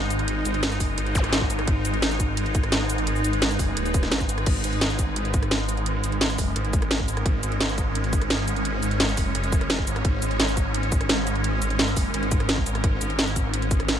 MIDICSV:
0, 0, Header, 1, 5, 480
1, 0, Start_track
1, 0, Key_signature, 5, "minor"
1, 0, Tempo, 348837
1, 384, Time_signature, 4, 2, 24, 8
1, 19260, End_track
2, 0, Start_track
2, 0, Title_t, "Synth drone"
2, 0, Program_c, 0, 95
2, 0, Note_on_c, 0, 56, 79
2, 0, Note_on_c, 0, 63, 73
2, 0, Note_on_c, 0, 70, 88
2, 2289, Note_off_c, 0, 70, 0
2, 2304, Note_on_c, 0, 71, 87
2, 6090, Note_off_c, 0, 63, 0
2, 6130, Note_off_c, 0, 71, 0
2, 6142, Note_on_c, 0, 61, 74
2, 6142, Note_on_c, 0, 70, 92
2, 9968, Note_off_c, 0, 70, 0
2, 9983, Note_on_c, 0, 73, 92
2, 13809, Note_off_c, 0, 73, 0
2, 13822, Note_on_c, 0, 70, 86
2, 17649, Note_off_c, 0, 70, 0
2, 17664, Note_on_c, 0, 73, 88
2, 19260, Note_off_c, 0, 56, 0
2, 19260, Note_off_c, 0, 61, 0
2, 19260, Note_off_c, 0, 73, 0
2, 19260, End_track
3, 0, Start_track
3, 0, Title_t, "Detuned saw bass"
3, 0, Program_c, 1, 39
3, 0, Note_on_c, 1, 32, 97
3, 605, Note_off_c, 1, 32, 0
3, 625, Note_on_c, 1, 32, 100
3, 1085, Note_off_c, 1, 32, 0
3, 1105, Note_on_c, 1, 30, 94
3, 1325, Note_off_c, 1, 30, 0
3, 1344, Note_on_c, 1, 32, 98
3, 2285, Note_off_c, 1, 32, 0
3, 2304, Note_on_c, 1, 32, 100
3, 2525, Note_off_c, 1, 32, 0
3, 2544, Note_on_c, 1, 32, 97
3, 4445, Note_off_c, 1, 32, 0
3, 4465, Note_on_c, 1, 32, 99
3, 4926, Note_off_c, 1, 32, 0
3, 4944, Note_on_c, 1, 30, 100
3, 5165, Note_off_c, 1, 30, 0
3, 5185, Note_on_c, 1, 27, 95
3, 5646, Note_off_c, 1, 27, 0
3, 5665, Note_on_c, 1, 32, 99
3, 6126, Note_off_c, 1, 32, 0
3, 6144, Note_on_c, 1, 32, 99
3, 6365, Note_off_c, 1, 32, 0
3, 6384, Note_on_c, 1, 32, 97
3, 8285, Note_off_c, 1, 32, 0
3, 8305, Note_on_c, 1, 32, 99
3, 8765, Note_off_c, 1, 32, 0
3, 8785, Note_on_c, 1, 30, 91
3, 9006, Note_off_c, 1, 30, 0
3, 9024, Note_on_c, 1, 32, 101
3, 9965, Note_off_c, 1, 32, 0
3, 9985, Note_on_c, 1, 32, 97
3, 10205, Note_off_c, 1, 32, 0
3, 10223, Note_on_c, 1, 32, 95
3, 12125, Note_off_c, 1, 32, 0
3, 12143, Note_on_c, 1, 32, 94
3, 12605, Note_off_c, 1, 32, 0
3, 12624, Note_on_c, 1, 30, 94
3, 12845, Note_off_c, 1, 30, 0
3, 12864, Note_on_c, 1, 30, 99
3, 13565, Note_off_c, 1, 30, 0
3, 13585, Note_on_c, 1, 32, 95
3, 13805, Note_off_c, 1, 32, 0
3, 13824, Note_on_c, 1, 32, 101
3, 14045, Note_off_c, 1, 32, 0
3, 14066, Note_on_c, 1, 32, 97
3, 15966, Note_off_c, 1, 32, 0
3, 15985, Note_on_c, 1, 32, 101
3, 16446, Note_off_c, 1, 32, 0
3, 16465, Note_on_c, 1, 30, 97
3, 16686, Note_off_c, 1, 30, 0
3, 16705, Note_on_c, 1, 32, 102
3, 17646, Note_off_c, 1, 32, 0
3, 17665, Note_on_c, 1, 32, 102
3, 17886, Note_off_c, 1, 32, 0
3, 17904, Note_on_c, 1, 32, 97
3, 19260, Note_off_c, 1, 32, 0
3, 19260, End_track
4, 0, Start_track
4, 0, Title_t, "Zap"
4, 0, Program_c, 2, 103
4, 1585, Note_on_c, 2, 60, 61
4, 1705, Note_off_c, 2, 60, 0
4, 19260, End_track
5, 0, Start_track
5, 0, Title_t, "Drums"
5, 143, Note_on_c, 9, 42, 64
5, 143, Note_on_c, 9, 82, 57
5, 264, Note_off_c, 9, 42, 0
5, 264, Note_on_c, 9, 42, 38
5, 281, Note_off_c, 9, 82, 0
5, 384, Note_off_c, 9, 42, 0
5, 384, Note_on_c, 9, 42, 96
5, 522, Note_off_c, 9, 42, 0
5, 624, Note_on_c, 9, 42, 69
5, 624, Note_on_c, 9, 82, 66
5, 745, Note_off_c, 9, 42, 0
5, 745, Note_on_c, 9, 42, 39
5, 762, Note_off_c, 9, 82, 0
5, 864, Note_off_c, 9, 42, 0
5, 864, Note_on_c, 9, 38, 118
5, 864, Note_on_c, 9, 42, 97
5, 985, Note_on_c, 9, 37, 34
5, 985, Note_on_c, 9, 82, 30
5, 1002, Note_off_c, 9, 38, 0
5, 1002, Note_off_c, 9, 42, 0
5, 1104, Note_on_c, 9, 36, 58
5, 1105, Note_off_c, 9, 82, 0
5, 1105, Note_on_c, 9, 46, 83
5, 1105, Note_on_c, 9, 82, 64
5, 1122, Note_off_c, 9, 37, 0
5, 1242, Note_off_c, 9, 36, 0
5, 1243, Note_off_c, 9, 46, 0
5, 1243, Note_off_c, 9, 82, 0
5, 1345, Note_on_c, 9, 37, 34
5, 1345, Note_on_c, 9, 42, 96
5, 1465, Note_off_c, 9, 42, 0
5, 1465, Note_on_c, 9, 42, 38
5, 1482, Note_off_c, 9, 37, 0
5, 1584, Note_off_c, 9, 42, 0
5, 1584, Note_on_c, 9, 42, 66
5, 1584, Note_on_c, 9, 82, 61
5, 1585, Note_on_c, 9, 36, 99
5, 1705, Note_off_c, 9, 42, 0
5, 1705, Note_on_c, 9, 37, 46
5, 1705, Note_on_c, 9, 42, 38
5, 1722, Note_off_c, 9, 36, 0
5, 1722, Note_off_c, 9, 82, 0
5, 1824, Note_off_c, 9, 42, 0
5, 1824, Note_on_c, 9, 38, 117
5, 1824, Note_on_c, 9, 42, 95
5, 1842, Note_off_c, 9, 37, 0
5, 1944, Note_on_c, 9, 36, 61
5, 1962, Note_off_c, 9, 38, 0
5, 1962, Note_off_c, 9, 42, 0
5, 2064, Note_on_c, 9, 42, 67
5, 2064, Note_on_c, 9, 82, 63
5, 2082, Note_off_c, 9, 36, 0
5, 2185, Note_off_c, 9, 42, 0
5, 2185, Note_on_c, 9, 37, 56
5, 2185, Note_on_c, 9, 42, 37
5, 2202, Note_off_c, 9, 82, 0
5, 2305, Note_off_c, 9, 42, 0
5, 2305, Note_on_c, 9, 36, 115
5, 2305, Note_on_c, 9, 42, 97
5, 2322, Note_off_c, 9, 37, 0
5, 2442, Note_off_c, 9, 36, 0
5, 2443, Note_off_c, 9, 42, 0
5, 2545, Note_on_c, 9, 42, 68
5, 2545, Note_on_c, 9, 82, 64
5, 2665, Note_off_c, 9, 42, 0
5, 2665, Note_on_c, 9, 42, 40
5, 2682, Note_off_c, 9, 82, 0
5, 2784, Note_off_c, 9, 42, 0
5, 2784, Note_on_c, 9, 38, 122
5, 2784, Note_on_c, 9, 42, 99
5, 2904, Note_on_c, 9, 82, 30
5, 2922, Note_off_c, 9, 38, 0
5, 2922, Note_off_c, 9, 42, 0
5, 3024, Note_off_c, 9, 82, 0
5, 3024, Note_on_c, 9, 36, 62
5, 3024, Note_on_c, 9, 42, 70
5, 3024, Note_on_c, 9, 82, 66
5, 3162, Note_off_c, 9, 36, 0
5, 3162, Note_off_c, 9, 42, 0
5, 3162, Note_off_c, 9, 82, 0
5, 3264, Note_on_c, 9, 42, 100
5, 3385, Note_off_c, 9, 42, 0
5, 3385, Note_on_c, 9, 42, 40
5, 3504, Note_off_c, 9, 42, 0
5, 3504, Note_on_c, 9, 42, 67
5, 3504, Note_on_c, 9, 82, 64
5, 3505, Note_on_c, 9, 36, 100
5, 3625, Note_off_c, 9, 42, 0
5, 3625, Note_on_c, 9, 37, 47
5, 3625, Note_on_c, 9, 42, 40
5, 3642, Note_off_c, 9, 36, 0
5, 3642, Note_off_c, 9, 82, 0
5, 3744, Note_off_c, 9, 42, 0
5, 3744, Note_on_c, 9, 38, 113
5, 3744, Note_on_c, 9, 42, 99
5, 3763, Note_off_c, 9, 37, 0
5, 3882, Note_off_c, 9, 38, 0
5, 3882, Note_off_c, 9, 42, 0
5, 3984, Note_on_c, 9, 42, 68
5, 3984, Note_on_c, 9, 82, 63
5, 4104, Note_off_c, 9, 42, 0
5, 4104, Note_on_c, 9, 42, 39
5, 4122, Note_off_c, 9, 82, 0
5, 4224, Note_off_c, 9, 42, 0
5, 4224, Note_on_c, 9, 42, 96
5, 4344, Note_on_c, 9, 82, 28
5, 4362, Note_off_c, 9, 42, 0
5, 4464, Note_off_c, 9, 82, 0
5, 4464, Note_on_c, 9, 42, 70
5, 4464, Note_on_c, 9, 82, 66
5, 4585, Note_off_c, 9, 42, 0
5, 4585, Note_on_c, 9, 42, 41
5, 4602, Note_off_c, 9, 82, 0
5, 4704, Note_off_c, 9, 42, 0
5, 4704, Note_on_c, 9, 38, 118
5, 4704, Note_on_c, 9, 42, 99
5, 4825, Note_on_c, 9, 37, 37
5, 4825, Note_on_c, 9, 82, 29
5, 4842, Note_off_c, 9, 38, 0
5, 4842, Note_off_c, 9, 42, 0
5, 4944, Note_off_c, 9, 82, 0
5, 4944, Note_on_c, 9, 46, 76
5, 4944, Note_on_c, 9, 82, 63
5, 4945, Note_on_c, 9, 36, 61
5, 4962, Note_off_c, 9, 37, 0
5, 5082, Note_off_c, 9, 36, 0
5, 5082, Note_off_c, 9, 46, 0
5, 5082, Note_off_c, 9, 82, 0
5, 5185, Note_on_c, 9, 37, 34
5, 5185, Note_on_c, 9, 42, 106
5, 5305, Note_off_c, 9, 42, 0
5, 5305, Note_on_c, 9, 42, 39
5, 5305, Note_on_c, 9, 82, 29
5, 5323, Note_off_c, 9, 37, 0
5, 5424, Note_off_c, 9, 42, 0
5, 5424, Note_off_c, 9, 82, 0
5, 5424, Note_on_c, 9, 36, 106
5, 5424, Note_on_c, 9, 42, 71
5, 5424, Note_on_c, 9, 82, 60
5, 5543, Note_off_c, 9, 42, 0
5, 5543, Note_on_c, 9, 37, 50
5, 5543, Note_on_c, 9, 38, 37
5, 5543, Note_on_c, 9, 42, 41
5, 5562, Note_off_c, 9, 36, 0
5, 5562, Note_off_c, 9, 82, 0
5, 5663, Note_off_c, 9, 38, 0
5, 5663, Note_off_c, 9, 42, 0
5, 5663, Note_on_c, 9, 38, 114
5, 5663, Note_on_c, 9, 42, 99
5, 5681, Note_off_c, 9, 37, 0
5, 5784, Note_on_c, 9, 82, 31
5, 5785, Note_on_c, 9, 36, 57
5, 5801, Note_off_c, 9, 38, 0
5, 5801, Note_off_c, 9, 42, 0
5, 5903, Note_off_c, 9, 82, 0
5, 5903, Note_on_c, 9, 42, 70
5, 5903, Note_on_c, 9, 82, 59
5, 5922, Note_off_c, 9, 36, 0
5, 6023, Note_off_c, 9, 42, 0
5, 6023, Note_on_c, 9, 37, 55
5, 6023, Note_on_c, 9, 42, 39
5, 6041, Note_off_c, 9, 82, 0
5, 6143, Note_off_c, 9, 42, 0
5, 6143, Note_on_c, 9, 42, 95
5, 6143, Note_on_c, 9, 49, 80
5, 6145, Note_on_c, 9, 36, 115
5, 6161, Note_off_c, 9, 37, 0
5, 6280, Note_off_c, 9, 42, 0
5, 6280, Note_off_c, 9, 49, 0
5, 6282, Note_off_c, 9, 36, 0
5, 6384, Note_on_c, 9, 42, 70
5, 6384, Note_on_c, 9, 82, 60
5, 6504, Note_off_c, 9, 42, 0
5, 6504, Note_on_c, 9, 42, 39
5, 6521, Note_off_c, 9, 82, 0
5, 6623, Note_off_c, 9, 42, 0
5, 6623, Note_on_c, 9, 38, 127
5, 6623, Note_on_c, 9, 42, 102
5, 6744, Note_on_c, 9, 82, 28
5, 6761, Note_off_c, 9, 38, 0
5, 6761, Note_off_c, 9, 42, 0
5, 6863, Note_off_c, 9, 82, 0
5, 6863, Note_on_c, 9, 42, 73
5, 6863, Note_on_c, 9, 82, 64
5, 6865, Note_on_c, 9, 36, 62
5, 7001, Note_off_c, 9, 42, 0
5, 7001, Note_off_c, 9, 82, 0
5, 7002, Note_off_c, 9, 36, 0
5, 7104, Note_on_c, 9, 42, 98
5, 7225, Note_off_c, 9, 42, 0
5, 7225, Note_on_c, 9, 42, 37
5, 7344, Note_off_c, 9, 42, 0
5, 7344, Note_on_c, 9, 42, 70
5, 7344, Note_on_c, 9, 82, 58
5, 7345, Note_on_c, 9, 36, 109
5, 7465, Note_off_c, 9, 42, 0
5, 7465, Note_on_c, 9, 37, 50
5, 7465, Note_on_c, 9, 42, 39
5, 7482, Note_off_c, 9, 36, 0
5, 7482, Note_off_c, 9, 82, 0
5, 7584, Note_off_c, 9, 42, 0
5, 7584, Note_on_c, 9, 38, 122
5, 7584, Note_on_c, 9, 42, 95
5, 7603, Note_off_c, 9, 37, 0
5, 7722, Note_off_c, 9, 38, 0
5, 7722, Note_off_c, 9, 42, 0
5, 7825, Note_on_c, 9, 42, 70
5, 7825, Note_on_c, 9, 82, 58
5, 7945, Note_off_c, 9, 42, 0
5, 7945, Note_on_c, 9, 42, 40
5, 7962, Note_off_c, 9, 82, 0
5, 8065, Note_off_c, 9, 42, 0
5, 8065, Note_on_c, 9, 42, 92
5, 8203, Note_off_c, 9, 42, 0
5, 8306, Note_on_c, 9, 42, 72
5, 8306, Note_on_c, 9, 82, 58
5, 8425, Note_off_c, 9, 42, 0
5, 8425, Note_on_c, 9, 42, 40
5, 8443, Note_off_c, 9, 82, 0
5, 8546, Note_off_c, 9, 42, 0
5, 8546, Note_on_c, 9, 38, 127
5, 8546, Note_on_c, 9, 42, 100
5, 8665, Note_on_c, 9, 37, 37
5, 8665, Note_on_c, 9, 82, 26
5, 8684, Note_off_c, 9, 38, 0
5, 8684, Note_off_c, 9, 42, 0
5, 8785, Note_off_c, 9, 82, 0
5, 8785, Note_on_c, 9, 36, 66
5, 8785, Note_on_c, 9, 46, 81
5, 8785, Note_on_c, 9, 82, 62
5, 8803, Note_off_c, 9, 37, 0
5, 8922, Note_off_c, 9, 46, 0
5, 8922, Note_off_c, 9, 82, 0
5, 8923, Note_off_c, 9, 36, 0
5, 9026, Note_on_c, 9, 37, 36
5, 9026, Note_on_c, 9, 42, 98
5, 9145, Note_off_c, 9, 42, 0
5, 9145, Note_on_c, 9, 42, 37
5, 9163, Note_off_c, 9, 37, 0
5, 9265, Note_off_c, 9, 42, 0
5, 9265, Note_on_c, 9, 36, 111
5, 9265, Note_on_c, 9, 42, 66
5, 9265, Note_on_c, 9, 82, 59
5, 9385, Note_off_c, 9, 42, 0
5, 9385, Note_on_c, 9, 37, 52
5, 9385, Note_on_c, 9, 42, 38
5, 9402, Note_off_c, 9, 82, 0
5, 9403, Note_off_c, 9, 36, 0
5, 9505, Note_off_c, 9, 42, 0
5, 9505, Note_on_c, 9, 38, 124
5, 9505, Note_on_c, 9, 42, 96
5, 9522, Note_off_c, 9, 37, 0
5, 9625, Note_on_c, 9, 36, 64
5, 9642, Note_off_c, 9, 38, 0
5, 9642, Note_off_c, 9, 42, 0
5, 9745, Note_on_c, 9, 42, 67
5, 9745, Note_on_c, 9, 82, 58
5, 9763, Note_off_c, 9, 36, 0
5, 9865, Note_off_c, 9, 42, 0
5, 9865, Note_on_c, 9, 37, 59
5, 9865, Note_on_c, 9, 42, 37
5, 9883, Note_off_c, 9, 82, 0
5, 9985, Note_off_c, 9, 42, 0
5, 9985, Note_on_c, 9, 36, 127
5, 9985, Note_on_c, 9, 42, 92
5, 10003, Note_off_c, 9, 37, 0
5, 10122, Note_off_c, 9, 36, 0
5, 10123, Note_off_c, 9, 42, 0
5, 10225, Note_on_c, 9, 42, 69
5, 10225, Note_on_c, 9, 82, 59
5, 10345, Note_off_c, 9, 42, 0
5, 10345, Note_on_c, 9, 42, 38
5, 10363, Note_off_c, 9, 82, 0
5, 10465, Note_off_c, 9, 42, 0
5, 10465, Note_on_c, 9, 38, 127
5, 10465, Note_on_c, 9, 42, 96
5, 10585, Note_on_c, 9, 82, 26
5, 10602, Note_off_c, 9, 38, 0
5, 10602, Note_off_c, 9, 42, 0
5, 10704, Note_off_c, 9, 82, 0
5, 10704, Note_on_c, 9, 36, 69
5, 10704, Note_on_c, 9, 42, 65
5, 10704, Note_on_c, 9, 82, 56
5, 10841, Note_off_c, 9, 42, 0
5, 10841, Note_off_c, 9, 82, 0
5, 10842, Note_off_c, 9, 36, 0
5, 10944, Note_on_c, 9, 42, 95
5, 11064, Note_off_c, 9, 42, 0
5, 11064, Note_on_c, 9, 42, 36
5, 11184, Note_on_c, 9, 36, 106
5, 11185, Note_off_c, 9, 42, 0
5, 11185, Note_on_c, 9, 42, 65
5, 11185, Note_on_c, 9, 82, 54
5, 11304, Note_off_c, 9, 42, 0
5, 11304, Note_on_c, 9, 37, 50
5, 11304, Note_on_c, 9, 42, 37
5, 11322, Note_off_c, 9, 36, 0
5, 11322, Note_off_c, 9, 82, 0
5, 11424, Note_off_c, 9, 42, 0
5, 11424, Note_on_c, 9, 38, 122
5, 11424, Note_on_c, 9, 42, 90
5, 11442, Note_off_c, 9, 37, 0
5, 11562, Note_off_c, 9, 38, 0
5, 11562, Note_off_c, 9, 42, 0
5, 11664, Note_on_c, 9, 42, 68
5, 11664, Note_on_c, 9, 82, 56
5, 11784, Note_off_c, 9, 42, 0
5, 11784, Note_on_c, 9, 42, 37
5, 11802, Note_off_c, 9, 82, 0
5, 11904, Note_off_c, 9, 42, 0
5, 11904, Note_on_c, 9, 42, 89
5, 12042, Note_off_c, 9, 42, 0
5, 12144, Note_on_c, 9, 42, 65
5, 12144, Note_on_c, 9, 82, 60
5, 12264, Note_off_c, 9, 42, 0
5, 12264, Note_on_c, 9, 42, 39
5, 12281, Note_off_c, 9, 82, 0
5, 12384, Note_off_c, 9, 42, 0
5, 12384, Note_on_c, 9, 38, 127
5, 12384, Note_on_c, 9, 42, 95
5, 12504, Note_on_c, 9, 37, 35
5, 12504, Note_on_c, 9, 82, 27
5, 12521, Note_off_c, 9, 38, 0
5, 12521, Note_off_c, 9, 42, 0
5, 12623, Note_off_c, 9, 82, 0
5, 12623, Note_on_c, 9, 46, 85
5, 12623, Note_on_c, 9, 82, 60
5, 12624, Note_on_c, 9, 36, 65
5, 12642, Note_off_c, 9, 37, 0
5, 12761, Note_off_c, 9, 46, 0
5, 12761, Note_off_c, 9, 82, 0
5, 12762, Note_off_c, 9, 36, 0
5, 12865, Note_on_c, 9, 37, 34
5, 12865, Note_on_c, 9, 42, 91
5, 12984, Note_off_c, 9, 42, 0
5, 12984, Note_on_c, 9, 42, 36
5, 12984, Note_on_c, 9, 82, 26
5, 13002, Note_off_c, 9, 37, 0
5, 13105, Note_off_c, 9, 42, 0
5, 13105, Note_off_c, 9, 82, 0
5, 13105, Note_on_c, 9, 36, 109
5, 13105, Note_on_c, 9, 42, 62
5, 13105, Note_on_c, 9, 82, 57
5, 13225, Note_off_c, 9, 42, 0
5, 13225, Note_on_c, 9, 37, 50
5, 13225, Note_on_c, 9, 42, 36
5, 13242, Note_off_c, 9, 36, 0
5, 13242, Note_off_c, 9, 82, 0
5, 13344, Note_off_c, 9, 42, 0
5, 13344, Note_on_c, 9, 38, 121
5, 13344, Note_on_c, 9, 42, 88
5, 13362, Note_off_c, 9, 37, 0
5, 13465, Note_on_c, 9, 36, 65
5, 13482, Note_off_c, 9, 38, 0
5, 13482, Note_off_c, 9, 42, 0
5, 13584, Note_on_c, 9, 42, 64
5, 13584, Note_on_c, 9, 82, 56
5, 13603, Note_off_c, 9, 36, 0
5, 13705, Note_off_c, 9, 42, 0
5, 13705, Note_on_c, 9, 37, 54
5, 13705, Note_on_c, 9, 42, 37
5, 13722, Note_off_c, 9, 82, 0
5, 13824, Note_off_c, 9, 42, 0
5, 13824, Note_on_c, 9, 42, 91
5, 13825, Note_on_c, 9, 36, 119
5, 13842, Note_off_c, 9, 37, 0
5, 13962, Note_off_c, 9, 42, 0
5, 13963, Note_off_c, 9, 36, 0
5, 14064, Note_on_c, 9, 42, 65
5, 14064, Note_on_c, 9, 82, 61
5, 14185, Note_off_c, 9, 42, 0
5, 14185, Note_on_c, 9, 42, 40
5, 14202, Note_off_c, 9, 82, 0
5, 14305, Note_off_c, 9, 42, 0
5, 14305, Note_on_c, 9, 38, 123
5, 14305, Note_on_c, 9, 42, 91
5, 14425, Note_on_c, 9, 82, 29
5, 14442, Note_off_c, 9, 38, 0
5, 14442, Note_off_c, 9, 42, 0
5, 14544, Note_off_c, 9, 82, 0
5, 14544, Note_on_c, 9, 42, 64
5, 14544, Note_on_c, 9, 82, 64
5, 14545, Note_on_c, 9, 36, 63
5, 14682, Note_off_c, 9, 42, 0
5, 14682, Note_off_c, 9, 82, 0
5, 14683, Note_off_c, 9, 36, 0
5, 14785, Note_on_c, 9, 42, 92
5, 14904, Note_off_c, 9, 42, 0
5, 14904, Note_on_c, 9, 42, 36
5, 15024, Note_off_c, 9, 42, 0
5, 15024, Note_on_c, 9, 42, 64
5, 15024, Note_on_c, 9, 82, 60
5, 15025, Note_on_c, 9, 36, 108
5, 15145, Note_off_c, 9, 42, 0
5, 15145, Note_on_c, 9, 37, 47
5, 15145, Note_on_c, 9, 42, 38
5, 15162, Note_off_c, 9, 82, 0
5, 15163, Note_off_c, 9, 36, 0
5, 15265, Note_off_c, 9, 42, 0
5, 15265, Note_on_c, 9, 38, 120
5, 15265, Note_on_c, 9, 42, 87
5, 15283, Note_off_c, 9, 37, 0
5, 15402, Note_off_c, 9, 38, 0
5, 15402, Note_off_c, 9, 42, 0
5, 15504, Note_on_c, 9, 42, 65
5, 15504, Note_on_c, 9, 82, 59
5, 15624, Note_off_c, 9, 42, 0
5, 15624, Note_on_c, 9, 42, 36
5, 15642, Note_off_c, 9, 82, 0
5, 15744, Note_off_c, 9, 42, 0
5, 15744, Note_on_c, 9, 42, 93
5, 15882, Note_off_c, 9, 42, 0
5, 15985, Note_on_c, 9, 42, 68
5, 15985, Note_on_c, 9, 82, 63
5, 16105, Note_off_c, 9, 42, 0
5, 16105, Note_on_c, 9, 42, 39
5, 16123, Note_off_c, 9, 82, 0
5, 16225, Note_off_c, 9, 42, 0
5, 16225, Note_on_c, 9, 38, 121
5, 16225, Note_on_c, 9, 42, 93
5, 16346, Note_on_c, 9, 37, 35
5, 16346, Note_on_c, 9, 82, 30
5, 16363, Note_off_c, 9, 38, 0
5, 16363, Note_off_c, 9, 42, 0
5, 16465, Note_off_c, 9, 82, 0
5, 16465, Note_on_c, 9, 36, 62
5, 16465, Note_on_c, 9, 46, 84
5, 16465, Note_on_c, 9, 82, 63
5, 16483, Note_off_c, 9, 37, 0
5, 16602, Note_off_c, 9, 46, 0
5, 16602, Note_off_c, 9, 82, 0
5, 16603, Note_off_c, 9, 36, 0
5, 16705, Note_on_c, 9, 37, 33
5, 16705, Note_on_c, 9, 42, 93
5, 16825, Note_off_c, 9, 42, 0
5, 16825, Note_on_c, 9, 42, 38
5, 16843, Note_off_c, 9, 37, 0
5, 16944, Note_off_c, 9, 42, 0
5, 16944, Note_on_c, 9, 42, 65
5, 16944, Note_on_c, 9, 82, 60
5, 16945, Note_on_c, 9, 36, 98
5, 17064, Note_off_c, 9, 42, 0
5, 17064, Note_on_c, 9, 37, 46
5, 17064, Note_on_c, 9, 42, 37
5, 17082, Note_off_c, 9, 82, 0
5, 17083, Note_off_c, 9, 36, 0
5, 17184, Note_off_c, 9, 42, 0
5, 17184, Note_on_c, 9, 38, 112
5, 17184, Note_on_c, 9, 42, 95
5, 17202, Note_off_c, 9, 37, 0
5, 17305, Note_on_c, 9, 36, 59
5, 17322, Note_off_c, 9, 38, 0
5, 17322, Note_off_c, 9, 42, 0
5, 17424, Note_on_c, 9, 42, 66
5, 17424, Note_on_c, 9, 82, 64
5, 17443, Note_off_c, 9, 36, 0
5, 17545, Note_off_c, 9, 42, 0
5, 17545, Note_on_c, 9, 37, 55
5, 17545, Note_on_c, 9, 42, 39
5, 17562, Note_off_c, 9, 82, 0
5, 17665, Note_off_c, 9, 42, 0
5, 17665, Note_on_c, 9, 36, 114
5, 17665, Note_on_c, 9, 42, 98
5, 17682, Note_off_c, 9, 37, 0
5, 17802, Note_off_c, 9, 36, 0
5, 17802, Note_off_c, 9, 42, 0
5, 17905, Note_on_c, 9, 42, 69
5, 17905, Note_on_c, 9, 82, 64
5, 18025, Note_off_c, 9, 42, 0
5, 18025, Note_on_c, 9, 42, 41
5, 18042, Note_off_c, 9, 82, 0
5, 18145, Note_off_c, 9, 42, 0
5, 18145, Note_on_c, 9, 38, 117
5, 18145, Note_on_c, 9, 42, 97
5, 18266, Note_on_c, 9, 82, 29
5, 18283, Note_off_c, 9, 38, 0
5, 18283, Note_off_c, 9, 42, 0
5, 18385, Note_off_c, 9, 82, 0
5, 18385, Note_on_c, 9, 36, 59
5, 18385, Note_on_c, 9, 42, 72
5, 18385, Note_on_c, 9, 82, 68
5, 18522, Note_off_c, 9, 36, 0
5, 18523, Note_off_c, 9, 42, 0
5, 18523, Note_off_c, 9, 82, 0
5, 18625, Note_on_c, 9, 42, 102
5, 18745, Note_off_c, 9, 42, 0
5, 18745, Note_on_c, 9, 42, 39
5, 18865, Note_off_c, 9, 42, 0
5, 18865, Note_on_c, 9, 36, 102
5, 18865, Note_on_c, 9, 42, 68
5, 18865, Note_on_c, 9, 82, 62
5, 18986, Note_off_c, 9, 42, 0
5, 18986, Note_on_c, 9, 37, 49
5, 18986, Note_on_c, 9, 42, 41
5, 19002, Note_off_c, 9, 36, 0
5, 19003, Note_off_c, 9, 82, 0
5, 19105, Note_off_c, 9, 42, 0
5, 19105, Note_on_c, 9, 38, 110
5, 19105, Note_on_c, 9, 42, 94
5, 19124, Note_off_c, 9, 37, 0
5, 19243, Note_off_c, 9, 38, 0
5, 19243, Note_off_c, 9, 42, 0
5, 19260, End_track
0, 0, End_of_file